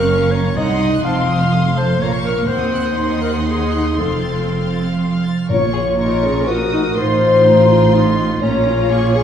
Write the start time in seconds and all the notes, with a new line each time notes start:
Already playing: F#1 F#2 A#4 F5 C#6
0.08 C#4 F6
0.22 C#6
0.32 C#5 A#5
0.46 C#6
0.55 C2 D#4 D#5 F#5 A#5 C6
0.69 C6
0.81 D#6
0.93 F#6
1.03 F1 F2 C4 F5 A5
1.16 C6
1.28 D#6
1.41 F6
1.52 A3 D#6
1.65 C6
1.77 C5 A5
1.89 C6
2.01 A#1 A#2 A#3 C#5 A#5 C#6
2.12 C#6
2.24 A#4 F6
2.38 C#6
2.48 D#2 C4 C5 F#5 C6
2.60 D#6
2.73 F#6
2.85 D#6
2.97 D#4 C6
3.10 D#6
3.21 A#4 F#6
3.34 D#6
3.46 G#4 C6
3.59 D#6
3.71 F#6
3.85 D#6
3.97 F1 F2 C4 A4 F5 C6
4.10 F6
4.23 A6
4.35 F6
4.48 C6
4.61 F6
4.74 A6
4.86 F6
4.98 C6
5.11 F6
5.24 A6
5.36 F6
5.49 A#1 A#2 F4 A#4 C#5 C#6
5.72 G#4
5.97 D#4 F4 A#4 C#6
6.23 C#4 G#4
6.43 F#4 A#4 C5
6.47 F4 F#4 A#4 D#6
6.73 D#4
6.96 A1 A2 D#4 F4 C5 C6
7.21 C6
7.44 D#4 F4
7.70 F4
7.93 D#4 F4
8.41 A#1 A#2 C#4 F4 C#5 A#5
8.66 F4
8.90 A#3 G#4 C#6
9.14 G#4 C#6